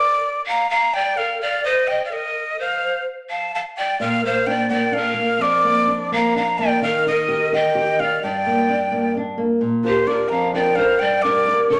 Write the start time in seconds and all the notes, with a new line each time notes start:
Already playing: A#4 D5
0.46 F5 A#5
0.70 F5 A#5
0.94 D5 G5
1.17 A#4 F5
1.41 D5 F5
1.64 C5 D#5
1.88 D#5 G5
2.04 D5 F5
2.11 A#4 D#5
2.58 C5 F5
3.29 F5 A5
3.54 F5 A5
3.77 D5 G5
4.00 A#2 A#4 F5
4.24 A#3 C5 F5
4.47 D4 D5 G5
4.69 A#3 D5 G5
4.92 D4 F5
4.96 A#4
5.14 A#3
5.39 F2 A#4 D5
5.64 A#3
5.87 D4
6.12 A#3 F5 A#5
6.36 D4 F5 A#5
6.58 A#3 D5 G5
6.82 D#3 A#4 F5
7.06 D#4 A#4 D#5
7.29 G4
7.52 D#4 D#5 G5
7.75 G4
8.00 D#4 D5 F5
8.23 G2 D5 G5
8.46 A#3
8.69 D4
8.92 A#3
9.17 D4
9.38 A#3
9.61 A#2
9.83 D4 F4 G4 A#4 C5
10.07 D4 F4 A#4 D5
10.29 F2 F5 A#5
10.53 D4 F4 A#4 D5 G5
10.75 D4 F4 A#4 C5 F5
10.99 G2 D5 G5
11.22 D4 G4 A#4 D5
11.47 D4 G4 A#4
11.69 D3 A#4 D5